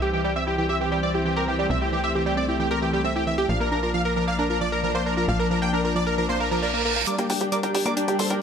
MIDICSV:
0, 0, Header, 1, 9, 480
1, 0, Start_track
1, 0, Tempo, 447761
1, 1823, Time_signature, 4, 2, 24, 8
1, 9028, End_track
2, 0, Start_track
2, 0, Title_t, "Digital synth lead"
2, 0, Program_c, 0, 84
2, 7581, Note_on_c, 0, 86, 91
2, 7669, Note_off_c, 0, 86, 0
2, 7701, Note_on_c, 0, 79, 66
2, 7789, Note_off_c, 0, 79, 0
2, 7822, Note_on_c, 0, 79, 62
2, 7910, Note_off_c, 0, 79, 0
2, 7942, Note_on_c, 0, 79, 61
2, 8029, Note_off_c, 0, 79, 0
2, 8062, Note_on_c, 0, 86, 91
2, 8150, Note_off_c, 0, 86, 0
2, 8182, Note_on_c, 0, 79, 66
2, 8269, Note_off_c, 0, 79, 0
2, 8303, Note_on_c, 0, 79, 62
2, 8390, Note_off_c, 0, 79, 0
2, 8422, Note_on_c, 0, 86, 98
2, 8509, Note_off_c, 0, 86, 0
2, 8540, Note_on_c, 0, 79, 61
2, 8629, Note_off_c, 0, 79, 0
2, 8660, Note_on_c, 0, 79, 64
2, 8749, Note_off_c, 0, 79, 0
2, 8778, Note_on_c, 0, 84, 91
2, 8868, Note_off_c, 0, 84, 0
2, 8900, Note_on_c, 0, 79, 63
2, 8989, Note_off_c, 0, 79, 0
2, 9028, End_track
3, 0, Start_track
3, 0, Title_t, "Supersaw synth"
3, 0, Program_c, 1, 81
3, 21, Note_on_c, 1, 67, 61
3, 109, Note_off_c, 1, 67, 0
3, 142, Note_on_c, 1, 67, 66
3, 229, Note_off_c, 1, 67, 0
3, 262, Note_on_c, 1, 67, 67
3, 350, Note_off_c, 1, 67, 0
3, 383, Note_on_c, 1, 76, 95
3, 470, Note_off_c, 1, 76, 0
3, 503, Note_on_c, 1, 67, 65
3, 590, Note_off_c, 1, 67, 0
3, 623, Note_on_c, 1, 67, 60
3, 710, Note_off_c, 1, 67, 0
3, 743, Note_on_c, 1, 76, 86
3, 830, Note_off_c, 1, 76, 0
3, 863, Note_on_c, 1, 67, 62
3, 950, Note_off_c, 1, 67, 0
3, 982, Note_on_c, 1, 67, 65
3, 1070, Note_off_c, 1, 67, 0
3, 1102, Note_on_c, 1, 74, 92
3, 1189, Note_off_c, 1, 74, 0
3, 1225, Note_on_c, 1, 67, 62
3, 1311, Note_off_c, 1, 67, 0
3, 1344, Note_on_c, 1, 67, 63
3, 1431, Note_off_c, 1, 67, 0
3, 1463, Note_on_c, 1, 70, 95
3, 1550, Note_off_c, 1, 70, 0
3, 1584, Note_on_c, 1, 67, 63
3, 1670, Note_off_c, 1, 67, 0
3, 1703, Note_on_c, 1, 67, 59
3, 1790, Note_off_c, 1, 67, 0
3, 1826, Note_on_c, 1, 76, 87
3, 1911, Note_off_c, 1, 76, 0
3, 1945, Note_on_c, 1, 67, 60
3, 2031, Note_off_c, 1, 67, 0
3, 2064, Note_on_c, 1, 67, 67
3, 2151, Note_off_c, 1, 67, 0
3, 2184, Note_on_c, 1, 76, 92
3, 2270, Note_off_c, 1, 76, 0
3, 2305, Note_on_c, 1, 67, 61
3, 2391, Note_off_c, 1, 67, 0
3, 2425, Note_on_c, 1, 67, 64
3, 2511, Note_off_c, 1, 67, 0
3, 2541, Note_on_c, 1, 74, 95
3, 2629, Note_off_c, 1, 74, 0
3, 2662, Note_on_c, 1, 67, 59
3, 2749, Note_off_c, 1, 67, 0
3, 2782, Note_on_c, 1, 67, 61
3, 2870, Note_off_c, 1, 67, 0
3, 2903, Note_on_c, 1, 70, 99
3, 2990, Note_off_c, 1, 70, 0
3, 3022, Note_on_c, 1, 67, 66
3, 3110, Note_off_c, 1, 67, 0
3, 3144, Note_on_c, 1, 67, 61
3, 3231, Note_off_c, 1, 67, 0
3, 3263, Note_on_c, 1, 76, 86
3, 3350, Note_off_c, 1, 76, 0
3, 3384, Note_on_c, 1, 67, 65
3, 3470, Note_off_c, 1, 67, 0
3, 3505, Note_on_c, 1, 76, 86
3, 3591, Note_off_c, 1, 76, 0
3, 3624, Note_on_c, 1, 67, 64
3, 3711, Note_off_c, 1, 67, 0
3, 3744, Note_on_c, 1, 77, 93
3, 3830, Note_off_c, 1, 77, 0
3, 3864, Note_on_c, 1, 70, 63
3, 3951, Note_off_c, 1, 70, 0
3, 3984, Note_on_c, 1, 70, 65
3, 4070, Note_off_c, 1, 70, 0
3, 4104, Note_on_c, 1, 70, 63
3, 4190, Note_off_c, 1, 70, 0
3, 4222, Note_on_c, 1, 77, 91
3, 4310, Note_off_c, 1, 77, 0
3, 4343, Note_on_c, 1, 70, 64
3, 4430, Note_off_c, 1, 70, 0
3, 4461, Note_on_c, 1, 70, 60
3, 4549, Note_off_c, 1, 70, 0
3, 4582, Note_on_c, 1, 77, 88
3, 4670, Note_off_c, 1, 77, 0
3, 4702, Note_on_c, 1, 70, 60
3, 4789, Note_off_c, 1, 70, 0
3, 4822, Note_on_c, 1, 70, 65
3, 4910, Note_off_c, 1, 70, 0
3, 4943, Note_on_c, 1, 74, 95
3, 5030, Note_off_c, 1, 74, 0
3, 5063, Note_on_c, 1, 70, 61
3, 5150, Note_off_c, 1, 70, 0
3, 5183, Note_on_c, 1, 70, 64
3, 5270, Note_off_c, 1, 70, 0
3, 5303, Note_on_c, 1, 72, 99
3, 5390, Note_off_c, 1, 72, 0
3, 5424, Note_on_c, 1, 70, 62
3, 5510, Note_off_c, 1, 70, 0
3, 5545, Note_on_c, 1, 70, 60
3, 5631, Note_off_c, 1, 70, 0
3, 5664, Note_on_c, 1, 77, 84
3, 5750, Note_off_c, 1, 77, 0
3, 5785, Note_on_c, 1, 70, 65
3, 5871, Note_off_c, 1, 70, 0
3, 5905, Note_on_c, 1, 70, 66
3, 5991, Note_off_c, 1, 70, 0
3, 6024, Note_on_c, 1, 79, 97
3, 6110, Note_off_c, 1, 79, 0
3, 6145, Note_on_c, 1, 70, 59
3, 6231, Note_off_c, 1, 70, 0
3, 6266, Note_on_c, 1, 70, 64
3, 6351, Note_off_c, 1, 70, 0
3, 6385, Note_on_c, 1, 74, 90
3, 6471, Note_off_c, 1, 74, 0
3, 6504, Note_on_c, 1, 70, 60
3, 6590, Note_off_c, 1, 70, 0
3, 6625, Note_on_c, 1, 70, 62
3, 6711, Note_off_c, 1, 70, 0
3, 6743, Note_on_c, 1, 72, 97
3, 6830, Note_off_c, 1, 72, 0
3, 6861, Note_on_c, 1, 70, 62
3, 6949, Note_off_c, 1, 70, 0
3, 6982, Note_on_c, 1, 70, 64
3, 7069, Note_off_c, 1, 70, 0
3, 7101, Note_on_c, 1, 70, 87
3, 7189, Note_off_c, 1, 70, 0
3, 7222, Note_on_c, 1, 70, 65
3, 7309, Note_off_c, 1, 70, 0
3, 7343, Note_on_c, 1, 70, 84
3, 7430, Note_off_c, 1, 70, 0
3, 7462, Note_on_c, 1, 70, 64
3, 7549, Note_off_c, 1, 70, 0
3, 7582, Note_on_c, 1, 70, 73
3, 7582, Note_on_c, 1, 74, 88
3, 7670, Note_off_c, 1, 70, 0
3, 7670, Note_off_c, 1, 74, 0
3, 7703, Note_on_c, 1, 67, 60
3, 7790, Note_off_c, 1, 67, 0
3, 7822, Note_on_c, 1, 67, 67
3, 7910, Note_off_c, 1, 67, 0
3, 7942, Note_on_c, 1, 67, 67
3, 8030, Note_off_c, 1, 67, 0
3, 8063, Note_on_c, 1, 70, 78
3, 8063, Note_on_c, 1, 74, 90
3, 8150, Note_off_c, 1, 70, 0
3, 8150, Note_off_c, 1, 74, 0
3, 8183, Note_on_c, 1, 67, 66
3, 8270, Note_off_c, 1, 67, 0
3, 8303, Note_on_c, 1, 67, 61
3, 8390, Note_off_c, 1, 67, 0
3, 8421, Note_on_c, 1, 74, 87
3, 8422, Note_on_c, 1, 70, 70
3, 8509, Note_off_c, 1, 70, 0
3, 8509, Note_off_c, 1, 74, 0
3, 8542, Note_on_c, 1, 67, 62
3, 8630, Note_off_c, 1, 67, 0
3, 8662, Note_on_c, 1, 67, 69
3, 8750, Note_off_c, 1, 67, 0
3, 8782, Note_on_c, 1, 69, 79
3, 8782, Note_on_c, 1, 72, 95
3, 8869, Note_off_c, 1, 69, 0
3, 8870, Note_off_c, 1, 72, 0
3, 8902, Note_on_c, 1, 67, 61
3, 8989, Note_off_c, 1, 67, 0
3, 9028, End_track
4, 0, Start_track
4, 0, Title_t, "Synth arpeggio sound"
4, 0, Program_c, 2, 84
4, 23, Note_on_c, 2, 67, 99
4, 107, Note_off_c, 2, 67, 0
4, 142, Note_on_c, 2, 52, 74
4, 193, Note_off_c, 2, 52, 0
4, 262, Note_on_c, 2, 55, 102
4, 377, Note_off_c, 2, 55, 0
4, 383, Note_on_c, 2, 60, 80
4, 467, Note_off_c, 2, 60, 0
4, 502, Note_on_c, 2, 64, 71
4, 586, Note_off_c, 2, 64, 0
4, 623, Note_on_c, 2, 52, 75
4, 707, Note_off_c, 2, 52, 0
4, 742, Note_on_c, 2, 67, 92
4, 826, Note_off_c, 2, 67, 0
4, 863, Note_on_c, 2, 52, 83
4, 914, Note_off_c, 2, 52, 0
4, 983, Note_on_c, 2, 55, 101
4, 1097, Note_off_c, 2, 55, 0
4, 1102, Note_on_c, 2, 60, 76
4, 1186, Note_off_c, 2, 60, 0
4, 1222, Note_on_c, 2, 64, 76
4, 1306, Note_off_c, 2, 64, 0
4, 1343, Note_on_c, 2, 52, 77
4, 1427, Note_off_c, 2, 52, 0
4, 1463, Note_on_c, 2, 67, 103
4, 1547, Note_off_c, 2, 67, 0
4, 1582, Note_on_c, 2, 52, 76
4, 1633, Note_off_c, 2, 52, 0
4, 1703, Note_on_c, 2, 55, 101
4, 1817, Note_off_c, 2, 55, 0
4, 1823, Note_on_c, 2, 60, 83
4, 1907, Note_off_c, 2, 60, 0
4, 1943, Note_on_c, 2, 64, 70
4, 2027, Note_off_c, 2, 64, 0
4, 2063, Note_on_c, 2, 52, 76
4, 2147, Note_off_c, 2, 52, 0
4, 2183, Note_on_c, 2, 67, 101
4, 2267, Note_off_c, 2, 67, 0
4, 2303, Note_on_c, 2, 52, 80
4, 2354, Note_off_c, 2, 52, 0
4, 2423, Note_on_c, 2, 55, 100
4, 2538, Note_off_c, 2, 55, 0
4, 2543, Note_on_c, 2, 60, 76
4, 2627, Note_off_c, 2, 60, 0
4, 2663, Note_on_c, 2, 64, 71
4, 2747, Note_off_c, 2, 64, 0
4, 2783, Note_on_c, 2, 52, 82
4, 2867, Note_off_c, 2, 52, 0
4, 2903, Note_on_c, 2, 67, 104
4, 2987, Note_off_c, 2, 67, 0
4, 3023, Note_on_c, 2, 52, 78
4, 3073, Note_off_c, 2, 52, 0
4, 3143, Note_on_c, 2, 55, 95
4, 3258, Note_off_c, 2, 55, 0
4, 3263, Note_on_c, 2, 60, 85
4, 3347, Note_off_c, 2, 60, 0
4, 3383, Note_on_c, 2, 64, 82
4, 3467, Note_off_c, 2, 64, 0
4, 3503, Note_on_c, 2, 52, 75
4, 3587, Note_off_c, 2, 52, 0
4, 3623, Note_on_c, 2, 67, 108
4, 3707, Note_off_c, 2, 67, 0
4, 3743, Note_on_c, 2, 53, 86
4, 3793, Note_off_c, 2, 53, 0
4, 3863, Note_on_c, 2, 58, 97
4, 3978, Note_off_c, 2, 58, 0
4, 3983, Note_on_c, 2, 62, 76
4, 4067, Note_off_c, 2, 62, 0
4, 4103, Note_on_c, 2, 65, 77
4, 4187, Note_off_c, 2, 65, 0
4, 4224, Note_on_c, 2, 53, 77
4, 4307, Note_off_c, 2, 53, 0
4, 4344, Note_on_c, 2, 70, 99
4, 4427, Note_off_c, 2, 70, 0
4, 4464, Note_on_c, 2, 53, 78
4, 4514, Note_off_c, 2, 53, 0
4, 4584, Note_on_c, 2, 58, 99
4, 4698, Note_off_c, 2, 58, 0
4, 4704, Note_on_c, 2, 62, 89
4, 4787, Note_off_c, 2, 62, 0
4, 4823, Note_on_c, 2, 65, 78
4, 4907, Note_off_c, 2, 65, 0
4, 4943, Note_on_c, 2, 53, 74
4, 5027, Note_off_c, 2, 53, 0
4, 5063, Note_on_c, 2, 70, 101
4, 5147, Note_off_c, 2, 70, 0
4, 5184, Note_on_c, 2, 53, 82
4, 5234, Note_off_c, 2, 53, 0
4, 5304, Note_on_c, 2, 58, 104
4, 5418, Note_off_c, 2, 58, 0
4, 5424, Note_on_c, 2, 62, 75
4, 5507, Note_off_c, 2, 62, 0
4, 5544, Note_on_c, 2, 65, 79
4, 5627, Note_off_c, 2, 65, 0
4, 5663, Note_on_c, 2, 53, 84
4, 5747, Note_off_c, 2, 53, 0
4, 5783, Note_on_c, 2, 70, 100
4, 5867, Note_off_c, 2, 70, 0
4, 5904, Note_on_c, 2, 53, 79
4, 5954, Note_off_c, 2, 53, 0
4, 6022, Note_on_c, 2, 58, 106
4, 6137, Note_off_c, 2, 58, 0
4, 6143, Note_on_c, 2, 62, 81
4, 6227, Note_off_c, 2, 62, 0
4, 6263, Note_on_c, 2, 65, 73
4, 6347, Note_off_c, 2, 65, 0
4, 6384, Note_on_c, 2, 53, 81
4, 6467, Note_off_c, 2, 53, 0
4, 6504, Note_on_c, 2, 70, 95
4, 6587, Note_off_c, 2, 70, 0
4, 6624, Note_on_c, 2, 53, 85
4, 6674, Note_off_c, 2, 53, 0
4, 6743, Note_on_c, 2, 58, 100
4, 6857, Note_off_c, 2, 58, 0
4, 6863, Note_on_c, 2, 77, 73
4, 6978, Note_off_c, 2, 77, 0
4, 6983, Note_on_c, 2, 53, 101
4, 7067, Note_off_c, 2, 53, 0
4, 7103, Note_on_c, 2, 74, 76
4, 7154, Note_off_c, 2, 74, 0
4, 7222, Note_on_c, 2, 58, 79
4, 7306, Note_off_c, 2, 58, 0
4, 7343, Note_on_c, 2, 58, 74
4, 7426, Note_off_c, 2, 58, 0
4, 7462, Note_on_c, 2, 77, 78
4, 7577, Note_off_c, 2, 77, 0
4, 7582, Note_on_c, 2, 55, 87
4, 7633, Note_off_c, 2, 55, 0
4, 7702, Note_on_c, 2, 58, 101
4, 7817, Note_off_c, 2, 58, 0
4, 7822, Note_on_c, 2, 62, 76
4, 7906, Note_off_c, 2, 62, 0
4, 7942, Note_on_c, 2, 67, 76
4, 8026, Note_off_c, 2, 67, 0
4, 8062, Note_on_c, 2, 55, 79
4, 8146, Note_off_c, 2, 55, 0
4, 8181, Note_on_c, 2, 70, 91
4, 8266, Note_off_c, 2, 70, 0
4, 8301, Note_on_c, 2, 55, 79
4, 8352, Note_off_c, 2, 55, 0
4, 8422, Note_on_c, 2, 58, 98
4, 8537, Note_off_c, 2, 58, 0
4, 8541, Note_on_c, 2, 62, 89
4, 8626, Note_off_c, 2, 62, 0
4, 8662, Note_on_c, 2, 67, 80
4, 8746, Note_off_c, 2, 67, 0
4, 8782, Note_on_c, 2, 55, 78
4, 8866, Note_off_c, 2, 55, 0
4, 8902, Note_on_c, 2, 70, 98
4, 8986, Note_off_c, 2, 70, 0
4, 9028, End_track
5, 0, Start_track
5, 0, Title_t, "String section"
5, 0, Program_c, 3, 48
5, 0, Note_on_c, 3, 52, 72
5, 0, Note_on_c, 3, 55, 70
5, 0, Note_on_c, 3, 60, 77
5, 1782, Note_off_c, 3, 55, 0
5, 1823, Note_on_c, 3, 57, 70
5, 3706, Note_off_c, 3, 52, 0
5, 3706, Note_off_c, 3, 60, 0
5, 3724, Note_off_c, 3, 57, 0
5, 3743, Note_on_c, 3, 53, 77
5, 3743, Note_on_c, 3, 58, 69
5, 3743, Note_on_c, 3, 62, 82
5, 7545, Note_off_c, 3, 53, 0
5, 7545, Note_off_c, 3, 58, 0
5, 7545, Note_off_c, 3, 62, 0
5, 7580, Note_on_c, 3, 55, 73
5, 7580, Note_on_c, 3, 58, 71
5, 7580, Note_on_c, 3, 62, 88
5, 9028, Note_off_c, 3, 55, 0
5, 9028, Note_off_c, 3, 58, 0
5, 9028, Note_off_c, 3, 62, 0
5, 9028, End_track
6, 0, Start_track
6, 0, Title_t, "Analog synth bass"
6, 0, Program_c, 4, 38
6, 0, Note_on_c, 4, 36, 91
6, 1800, Note_off_c, 4, 36, 0
6, 1823, Note_on_c, 4, 36, 87
6, 3720, Note_off_c, 4, 36, 0
6, 3744, Note_on_c, 4, 34, 87
6, 5640, Note_off_c, 4, 34, 0
6, 5663, Note_on_c, 4, 34, 92
6, 7560, Note_off_c, 4, 34, 0
6, 7702, Note_on_c, 4, 31, 88
6, 7795, Note_off_c, 4, 31, 0
6, 7822, Note_on_c, 4, 31, 97
6, 7914, Note_off_c, 4, 31, 0
6, 7942, Note_on_c, 4, 31, 86
6, 8034, Note_off_c, 4, 31, 0
6, 8182, Note_on_c, 4, 31, 88
6, 8275, Note_off_c, 4, 31, 0
6, 8303, Note_on_c, 4, 31, 97
6, 8395, Note_off_c, 4, 31, 0
6, 8423, Note_on_c, 4, 31, 93
6, 8515, Note_off_c, 4, 31, 0
6, 8662, Note_on_c, 4, 31, 89
6, 8755, Note_off_c, 4, 31, 0
6, 8782, Note_on_c, 4, 31, 93
6, 8875, Note_off_c, 4, 31, 0
6, 8901, Note_on_c, 4, 31, 89
6, 8994, Note_off_c, 4, 31, 0
6, 9028, End_track
7, 0, Start_track
7, 0, Title_t, "Reverse cymbal"
7, 0, Program_c, 5, 119
7, 6623, Note_on_c, 5, 60, 72
7, 7584, Note_off_c, 5, 60, 0
7, 9028, End_track
8, 0, Start_track
8, 0, Title_t, "Riser"
8, 0, Program_c, 6, 103
8, 7583, Note_on_c, 6, 60, 79
8, 9028, Note_off_c, 6, 60, 0
8, 9028, End_track
9, 0, Start_track
9, 0, Title_t, "Drums"
9, 7582, Note_on_c, 9, 42, 80
9, 7689, Note_off_c, 9, 42, 0
9, 7703, Note_on_c, 9, 42, 51
9, 7810, Note_off_c, 9, 42, 0
9, 7822, Note_on_c, 9, 46, 100
9, 7930, Note_off_c, 9, 46, 0
9, 7942, Note_on_c, 9, 42, 55
9, 8050, Note_off_c, 9, 42, 0
9, 8063, Note_on_c, 9, 42, 72
9, 8170, Note_off_c, 9, 42, 0
9, 8183, Note_on_c, 9, 42, 54
9, 8290, Note_off_c, 9, 42, 0
9, 8303, Note_on_c, 9, 46, 102
9, 8410, Note_off_c, 9, 46, 0
9, 8423, Note_on_c, 9, 42, 53
9, 8530, Note_off_c, 9, 42, 0
9, 8543, Note_on_c, 9, 42, 80
9, 8650, Note_off_c, 9, 42, 0
9, 8663, Note_on_c, 9, 42, 50
9, 8770, Note_off_c, 9, 42, 0
9, 8782, Note_on_c, 9, 46, 100
9, 8889, Note_off_c, 9, 46, 0
9, 8902, Note_on_c, 9, 42, 53
9, 9009, Note_off_c, 9, 42, 0
9, 9028, End_track
0, 0, End_of_file